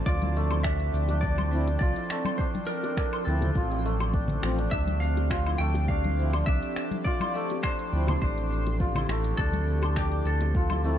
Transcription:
Already playing: analog synth pad F3 C4 D5 A5, santur A3 D4 E4
0.06 analog synth bass D2, santur F4, electric slide guitar D5, kick, shaker
0.22 santur E4, closed hi-hat, high conga, shaker
0.36 santur A3, shaker
0.50 analog synth pad G5, closed hi-hat, high bongo, high conga, low woodblock, shaker
0.63 santur D4, electric slide guitar E5, finger snap, kick, shaker
0.80 closed hi-hat, shaker
0.94 analog synth bass D2, shaker
1.08 santur D4, closed hi-hat, high bongo, high conga, shaker
1.21 santur D4, electric slide guitar D5, kick, shaker
1.38 closed hi-hat, high bongo, high conga, low woodblock, shaker
1.51 harmonium F3 C4 E4, shaker
1.67 closed hi-hat, high bongo, shaker
1.79 analog synth bass C2, santur F4, electric slide guitar D5, kick, shaker
1.96 santur E4, closed hi-hat, shaker
2.10 santur A3, finger snap, shaker
2.25 closed hi-hat, high conga, low woodblock, shaker
2.38 santur D4, electric slide guitar C5, kick, shaker
2.55 closed hi-hat, high conga, shaker
2.67 electric slide guitar A#4, shaker
2.83 santur D4, closed hi-hat, high bongo, shaker
2.97 santur D4, finger snap, kick, shaker
3.13 closed hi-hat, low woodblock, shaker
3.25 analog synth bass D2, harmonium F3 C4 E4, electric slide guitar A4, shaker
3.41 closed hi-hat, high bongo, low conga, shaker
3.55 analog synth bass A1, santur F4, kick, high conga, shaker
3.71 santur E4, closed hi-hat, shaker
3.85 santur A3, shaker
4.00 closed hi-hat, high bongo, low woodblock, shaker
4.14 santur D4, kick, shaker
4.28 closed hi-hat, low conga, shaker
4.43 analog synth bass A1, harmonium F3 C4 F4, finger snap, high bongo, shaker
4.53 analog synth pad G4
4.59 santur D4, closed hi-hat, shaker
4.71 analog synth bass D2, santur D4, electric slide guitar E5, kick, shaker
4.87 closed hi-hat, high conga, shaker
5.00 electric slide guitar F5, shaker
5.15 analog synth pad D5, closed hi-hat, high bongo, high conga, shaker
5.30 santur F4, finger snap, kick, shaker
5.46 santur E4, closed hi-hat, low woodblock, shaker
5.58 analog synth bass D2, santur A3, electric slide guitar G5, shaker
5.74 closed hi-hat, high bongo, high conga, shaker
5.88 santur D4, electric slide guitar F5, kick, shaker
6.04 closed hi-hat, high bongo, high conga, shaker
6.17 harmonium F3 C4 E4, shaker
6.33 santur D4, closed hi-hat, high bongo, low woodblock, shaker
6.46 analog synth bass C2, santur D4, electric slide guitar E5, kick, shaker
6.63 closed hi-hat, shaker
6.76 finger snap, shaker
6.91 closed hi-hat, high conga, shaker
7.04 santur F4, electric slide guitar D5, kick, shaker
7.20 santur E4, closed hi-hat, high conga, low woodblock, shaker
7.35 santur A3, shaker
7.50 closed hi-hat, high bongo, shaker
7.63 santur D4, electric slide guitar C5, finger snap, kick, shaker
7.79 closed hi-hat, shaker
7.92 analog synth bass D2, harmonium F3 C4 E4, shaker
8.07 santur D4, closed hi-hat, high bongo, low conga, low woodblock, shaker
8.22 analog synth bass A1, santur D4, electric slide guitar C5, kick, shaker
8.38 closed hi-hat, shaker
8.52 shaker
8.67 closed hi-hat, high bongo, shaker
8.80 santur F4, kick, shaker
8.95 santur E4, closed hi-hat, low conga, low woodblock, shaker
9.09 analog synth bass A1, santur A3, finger snap, high bongo, shaker
9.24 closed hi-hat, shaker
9.37 analog synth bass D2, santur D4, electric slide guitar A4, kick, shaker
9.53 closed hi-hat, high conga, shaker
9.68 shaker
9.82 santur D4, closed hi-hat, high bongo, high conga, low woodblock, shaker
9.96 santur D4, electric slide guitar G4, finger snap, kick, shaker
10.11 closed hi-hat, shaker
10.25 analog synth bass D2, electric slide guitar A4, shaker
10.41 closed hi-hat, high bongo, high conga, shaker
10.55 santur F4, kick, shaker
10.70 santur E4, closed hi-hat, high bongo, high conga, low woodblock, shaker
10.83 harmonium F3 C4 E4, santur A3, shaker

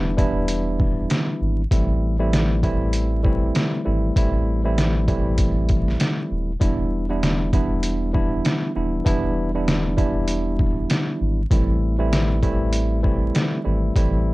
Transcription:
Already playing: sub bass E1, tine electric piano E3 G3 B3 D4 E4
0.17 tine electric piano E3 G3 B3 D4 E4, kick, closed hi-hat
0.48 closed hi-hat
0.80 kick
1.10 snare, closed hi-hat
1.41 sub bass G#1
1.71 sub bass A1, tine electric piano E3 G3 A3 C4 E4, kick, closed hi-hat
2.19 tine electric piano E3 G3 A3 C4 E4
2.33 snare, closed hi-hat
2.63 tine electric piano E3 G3 A3 C4 E4, kick, closed hi-hat
2.93 closed hi-hat
3.23 tine electric piano E3 G3 A3 C4 E4, kick
3.55 snare, closed hi-hat
3.84 sub bass G#1, tine electric piano E3 G3 A3 C4 E4
4.16 sub bass A1, tine electric piano E3 G3 A3 C4 E4, kick, closed hi-hat
4.64 tine electric piano E3 G3 A3 C4 E4
4.78 snare, closed hi-hat
5.07 tine electric piano E3 G3 A3 C4 E4, kick, closed hi-hat
5.38 kick, closed hi-hat
5.69 kick, closed hi-hat
5.88 snare
6.00 snare, closed hi-hat
6.31 sub bass D#1
6.60 sub bass E1, tine electric piano E3 G3 B3 D4 E4, kick, closed hi-hat
7.09 tine electric piano E3 G3 B3 D4 E4
7.23 snare, closed hi-hat
7.53 tine electric piano E3 G3 B3 D4 E4, kick, closed hi-hat
7.83 closed hi-hat
8.13 tine electric piano E3 G3 B3 D4 E4, kick
8.45 snare, closed hi-hat
8.75 sub bass D#1, tine electric piano E3 G3 B3 D4 E4
9.05 sub bass E1, tine electric piano E3 G3 B3 D4 E4, kick, closed hi-hat
9.54 tine electric piano E3 G3 B3 D4 E4
9.68 snare, closed hi-hat
9.96 tine electric piano E3 G3 B3 D4 E4, kick, closed hi-hat
10.28 closed hi-hat
10.59 kick
10.90 snare, closed hi-hat
11.21 sub bass G#1
11.51 sub bass A1, tine electric piano E3 G3 A3 C4 E4, kick, closed hi-hat
11.98 tine electric piano E3 G3 A3 C4 E4
12.13 snare, closed hi-hat
12.42 tine electric piano E3 G3 A3 C4 E4, kick, closed hi-hat
12.73 closed hi-hat
13.02 tine electric piano E3 G3 A3 C4 E4, kick
13.35 snare, closed hi-hat
13.64 sub bass G#1, tine electric piano E3 G3 A3 C4 E4
13.95 sub bass A1, tine electric piano E3 G3 A3 C4 E4, kick, closed hi-hat

